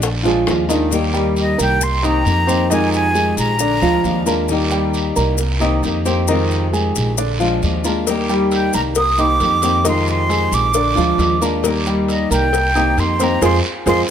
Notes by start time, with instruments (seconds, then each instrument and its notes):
Already playing: upright bass A#1, grand piano D4 D5
0.02 muted nylon-string guitar stroke, high bongo, long guiro, maracas
0.23 grand piano F3 F4 G#4, nylon-string guitar G#3 D4 F4, high bongo, maracas
0.46 upright bass D#2, nylon-string guitar F3 G#3 D4 F4, high bongo, low bongo, short guiro, maracas
0.69 grand piano D#3 D#4 D#5, nylon-string guitar G#3 D4 F4, high bongo, short guiro, maracas
0.90 nylon-string guitar D#3 G3 A#3 D#4 G4, long guiro, maracas
1.13 grand piano G3 G4 G5, maracas
1.36 flute D#5, short guiro, maracas
1.58 upright bass C2, grand piano A#3 A#4 A#5, flute G5, short guiro, maracas
1.81 flute C6, muted nylon-string guitar stroke, long guiro, maracas
2.02 nylon-string guitar D#3 A#3 C4 G4, grand piano D#4 D#5 D#6, flute A#5, maracas
2.24 upright bass F2, nylon-string guitar D#3 A#3 C4 G4, short guiro, maracas
2.47 nylon-string guitar D#3 A#3 C4 G4, grand piano C4 C5 C6, short guiro, maracas
2.70 nylon-string guitar C3 D#3 G#3 C4 F4, grand piano D#3 D#4 D#5, flute G#5, long guiro, maracas
2.94 flute G#5, maracas
3.15 grand piano G#3 G#4 G#5, short guiro, maracas
3.36 upright bass A#1, flute A#5, short guiro, maracas
3.59 grand piano D3 D4 D5, muted nylon-string guitar stroke, long guiro, maracas
3.81 upright bass D2, grand piano F3 F4 F5, nylon-string guitar G#3 D4 F4, maracas
4.04 upright bass D#2, nylon-string guitar F3 G#3 D4 F4, short guiro, maracas
4.26 nylon-string guitar G#3 D4 F4, grand piano A#3 A#4 A#5, short guiro, maracas
4.48 nylon-string guitar D#3 G3 A#3 D#4 G4, long guiro, maracas
4.71 grand piano G3 G4 G5, maracas
4.94 short guiro, maracas
5.16 upright bass C2, grand piano A#3 A#4 A#5, short guiro, maracas
5.38 muted nylon-string guitar stroke, long guiro, maracas
5.60 nylon-string guitar D#3 A#3 C4 G4, grand piano D#4 D#5 D#6, maracas
5.83 upright bass F2, nylon-string guitar D#3 A#3 C4 G4, short guiro, maracas
6.05 nylon-string guitar D#3 A#3 C4 G4, grand piano C4 C5 C6, short guiro, maracas
6.28 nylon-string guitar C3 D#3 G#3 C4 F4, grand piano D#3 D#4 D#5, long guiro, maracas
6.51 maracas
6.73 grand piano G#3 G#4 G#5, short guiro, maracas
6.96 upright bass A#1, short guiro, maracas
7.17 grand piano D3 D4 D5, muted nylon-string guitar stroke, long guiro, maracas
7.39 grand piano F3 F4 F5, nylon-string guitar G#3 D4 F4, maracas
7.62 upright bass D#2, nylon-string guitar F3 G#3 D4 F4, short guiro, maracas
7.84 nylon-string guitar G#3 D4 F4, grand piano A#3 A#4 A#5, short guiro, maracas
8.06 nylon-string guitar D#3 G3 A#3 D#4 G4, cowbell, long guiro, maracas
8.29 grand piano G3 G4 G5, maracas
8.51 flute G5, cowbell, short guiro, maracas
8.73 upright bass C2, grand piano A#3 A#4 A#5, flute A#5, short guiro, maracas
8.95 flute D#6, muted nylon-string guitar stroke, cowbell, long guiro, maracas
9.18 nylon-string guitar D#3 A#3 C4 G4, grand piano D#4 D#5 C6, flute D6, maracas
9.40 upright bass F2, nylon-string guitar D#3 A#3 C4 G4, cowbell, short guiro, maracas
9.62 nylon-string guitar D#3 A#3 C4 G4, grand piano C4 C5 C6, cowbell, short guiro, maracas
9.84 nylon-string guitar C3 D#3 G#3 C4 F4, grand piano D#3 D#4 D#5, cowbell, long guiro, maracas
9.89 flute C6
10.07 flute C6, maracas
10.29 grand piano G#3 G#4 G#5, cowbell, short guiro, maracas
10.51 upright bass A#1, flute D6, short guiro, maracas
10.74 grand piano D3 D4 D5, muted nylon-string guitar stroke, cowbell, long guiro, maracas
10.95 upright bass D2, grand piano F3 F4 F5, nylon-string guitar G#3 D4 F4, maracas
11.18 upright bass D#2, nylon-string guitar F3 G#3 D4 F4, cowbell, short guiro, maracas
11.41 nylon-string guitar G#3 D4 F4, grand piano A#3 A#4 A#5, short guiro, maracas
11.63 nylon-string guitar D#3 G3 A#3 D#4 G4, cowbell, long guiro, maracas
11.86 grand piano G3 G4 G5, maracas
12.08 flute D#5, cowbell, short guiro, maracas
12.30 upright bass C2, grand piano A#3 A#4 A#5, flute G5, short guiro, maracas
12.53 muted nylon-string guitar stroke, cowbell, long guiro, maracas
12.75 nylon-string guitar D#3 A#3 C4 G4, grand piano D#4 D#5 D#6, maracas
12.97 upright bass F2, nylon-string guitar D#3 A#3 C4 G4, flute C6, cowbell, short guiro, maracas
13.19 nylon-string guitar D#3 A#3 C4 G4, grand piano C4 C5 C6, cowbell, short guiro, maracas
13.23 flute A#5
13.41 upright bass F2, nylon-string guitar F3 G#3 C4, grand piano F4 G#4 C5, flute C6, cowbell, long guiro, maracas
13.86 upright bass F2, nylon-string guitar F3 G#3 C4, grand piano F4 G#4 C5, flute C6, cowbell, long guiro, maracas